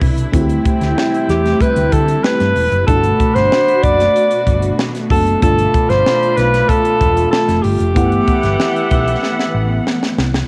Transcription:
Already playing: B2 D3 D4 E4 G4
0.01 C2, kick, open hi-hat
0.18 closed hi-hat
0.32 D2 C3 G3 A3 C4 E4 F#4 E5 G5, kick, closed hi-hat
0.41 G4
0.49 closed hi-hat
0.65 kick, closed hi-hat
0.81 D2, snare, closed hi-hat
0.98 snare
1.14 closed hi-hat
1.29 E2 G4, snare, closed hi-hat
1.46 snare, closed hi-hat
1.60 B4, kick, closed hi-hat
1.76 D2, closed hi-hat
1.92 D3 A4, kick, closed hi-hat
2.08 closed hi-hat
2.24 A3 C4 E4 G4 B4, snare
2.40 G2, snare, closed hi-hat
2.56 E1, open hi-hat
2.72 F#1, closed hi-hat
2.87 G1 B2 A3 D4 E4 F#4 A4 D5 F#5 B5, kick, closed hi-hat
2.96 F#4
3.03 closed hi-hat
3.20 kick, closed hi-hat
3.35 G1 C5, snare, closed hi-hat
3.52 snare
3.68 closed hi-hat
3.83 F#1 D5, kick, closed hi-hat
4.00 snare, closed hi-hat
4.16 closed hi-hat
4.31 closed hi-hat
4.47 G1, kick, closed hi-hat
4.62 closed hi-hat
4.79 snare
4.95 snare, closed hi-hat
5.10 F#1 A3 B3 D4 F#4 A4, kick, open hi-hat
5.27 closed hi-hat
5.41 G1 B2 A3 D4 F4 A4 D5 F5 B5, kick, closed hi-hat
5.58 closed hi-hat
5.74 kick, closed hi-hat
5.89 G1 C5, snare, closed hi-hat
6.06 snare
6.23 closed hi-hat
6.37 B1 B4, snare, closed hi-hat
6.54 snare, closed hi-hat
6.69 A4, kick, closed hi-hat
6.85 closed hi-hat
7.01 E1, kick, closed hi-hat
7.17 closed hi-hat
7.31 A4, snare
7.48 F1, snare, closed hi-hat
7.63 G1 G4, open hi-hat
7.80 F1, closed hi-hat
7.95 G1 E3 A3 B3 E4 A4 B4 E5 F#5, kick, closed hi-hat
8.12 closed hi-hat
8.28 kick, closed hi-hat
8.43 G1, snare, closed hi-hat
8.60 snare
8.76 closed hi-hat
8.91 B1, kick, closed hi-hat
9.08 closed hi-hat
9.23 snare
9.39 snare
9.54 A1
9.87 snare
10.03 snare
10.18 C2, snare
10.34 snare

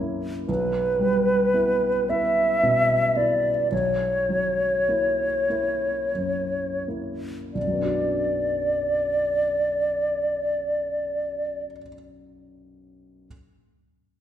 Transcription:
Already playing: B1 F#2 F#3
0.00 A#3 E4
0.48 B1 B4
0.99 G3
1.54 B3 E4
2.09 B3 E4 E5
2.63 B2
3.16 B3 E4 D5
3.72 B1 C#5
4.29 F#3
4.89 A#3 E4
5.50 A#3 E4
6.15 F#2
6.88 A#3 E4
7.53 B1 D5
7.61 F#2
7.67 F#3
7.73 B3
7.79 D4
7.85 F#4

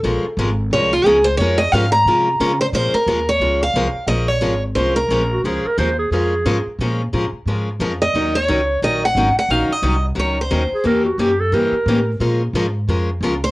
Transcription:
0.03 A#1 F3 G#3 C#4 F4 A#4
0.24 muted upright bass stroke
0.37 G#1 F3 G#3 C#4 F4 A#4
0.71 C2 F3 G#3 C#4 F4 A#4 C#5
0.93 F4
1.04 C#2 F3 G#3 C#4 F4 G#4 A#4
1.24 C5
1.37 F2 F3 G#3 C#4 F4 C#5
1.41 A#4
1.58 D#5
1.72 G#2 F3 G#3 C#4 F4 A#4 F5
1.92 A#5
2.05 C3 F3 G#3 C#4 F4 A#4
2.40 C#3 F3 G#3 C#4 F4 A#4
2.61 C5
2.72 A#2 F3 G#3 C#4 F4 A#4 C5
2.94 A#4, muted upright bass stroke
3.06 D#2 F3 G#3 C#4 F4 A#4
3.29 C#5
3.40 C#2 F3 G#3 C#4 F4 A#4
3.63 F5
3.74 C2 F3 G#3 C#4 F4 A#4
3.94 muted upright bass stroke
4.07 A#1 F3 G#3 C#4 F4 A#4 D#5
4.28 C#5
4.41 G#1 F3 G#3 C#4 F4 A#4
4.75 C2 F3 G#3 C#4 F4 A#4 C5
4.96 A#4
5.08 A#1 F3 G#3 C#4 F4 A#4
5.32 F#4
5.44 C#2 F3 G#3 C#4 F4 G#4 A#4
5.64 A#4, muted upright bass stroke
5.78 D#2 F3 G#3 C#4 F4 A#4 C5
5.99 G#4
6.11 F2 F3 G#3 C#4 F4 G#4 A#4
6.45 G#2 F3 G#3 C#4 F4 A#4
6.67 muted upright bass stroke
6.79 A#2 F3 G#3 C#4 F4 A#4
7.13 A2 F3 G#3 C#4 F4 A#4
7.32 muted upright bass stroke
7.46 G#2 F3 G#3 C#4 F4 A#4
7.80 F2 F3 G#3 C#4 F4 A#4
8.02 D#5
8.14 D#2 D#3 F#3 C#4 D#4 A#4
8.35 C#5
8.48 C#2 D#3 F#3 C#4 D#4 A#4
8.82 A#1 D#3 F#3 C#4 D#4 A#4 D#5
9.05 F#5
9.15 G#1 D#3 F#3 C#4 D#4 A#4
9.36 F#5, muted upright bass stroke
9.48 A#1 D#3 F#3 C#4 D#4 A#4 F5
9.69 D#5, muted upright bass stroke
9.82 C2 D#3 F#3 C#4 D#4 A#4
10.15 C#2 D#3 F#3 C#4 D#4 A#4
10.19 C#5
10.41 C5
10.51 D#2 D#3 F#3 C#4 D#4 A#4
10.72 G#4, muted upright bass stroke
10.84 E2 E3 A#3 C#4 G4 A#4
11.05 F#4
11.18 F#2 E3 A#3 C#4 G4
11.40 A4
11.52 G2 E3 A#3 C#4 G4 A#4
11.72 muted upright bass stroke
11.86 A2 E3 A#3 C#4 G4
12.20 A#2 F3 G#3 C#4 F4 A#4
12.53 G#2 F3 G#3 C#4 F4 A#4
12.88 F2 F3 G#3 C#4 F4 A#4
13.21 C#2 F3 G#3 C#4 F4 A#4
13.44 C5

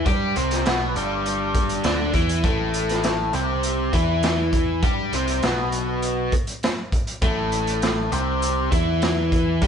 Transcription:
0.06 G2 G3 G4, kick, closed hi-hat
0.36 C2 C3 C4, closed hi-hat
0.51 snare, closed hi-hat
0.66 B1 B2 B3, snare, closed hi-hat
0.95 G1 G2 G3, closed hi-hat
1.26 closed hi-hat
1.55 kick, closed hi-hat
1.69 closed hi-hat
1.84 D2 D3 D4, snare, closed hi-hat
2.14 E2 E3 E4, kick, closed hi-hat
2.29 closed hi-hat
2.44 A1 A2 A3, kick, closed hi-hat
2.74 closed hi-hat
2.89 snare, closed hi-hat
3.04 snare, closed hi-hat
3.33 C2 C3 C4, closed hi-hat
3.63 closed hi-hat
3.93 E2 E3 E4, kick, closed hi-hat
4.23 snare, closed hi-hat
4.53 kick, closed hi-hat
4.83 G2 G3 G4, kick, closed hi-hat
5.13 C2 C3 C4, closed hi-hat
5.28 closed hi-hat
5.42 B1 B2 B3, snare, closed hi-hat
5.72 closed hi-hat
6.02 closed hi-hat
6.32 kick, closed hi-hat
6.47 closed hi-hat
6.63 snare, closed hi-hat
6.92 kick, closed hi-hat
7.07 closed hi-hat
7.22 A1 A2 A3, kick, closed hi-hat
7.52 closed hi-hat
7.67 closed hi-hat
7.82 snare, closed hi-hat
8.12 C2 C3 C4, closed hi-hat
8.42 closed hi-hat
8.72 E2 E3 E4, kick, closed hi-hat
9.02 snare, closed hi-hat
9.32 kick, closed hi-hat
9.62 G2 G3 G4, kick, closed hi-hat

